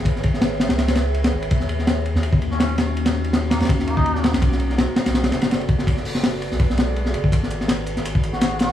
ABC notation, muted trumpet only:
X:1
M:4/4
L:1/16
Q:"Swing 16ths" 1/4=165
K:D#phr
V:1 name="Muted trumpet"
z16 | z8 z3 C C2 z2 | z6 A, A, z2 A, D4 z | z16 |
z16 | z8 z3 F F2 F2 |]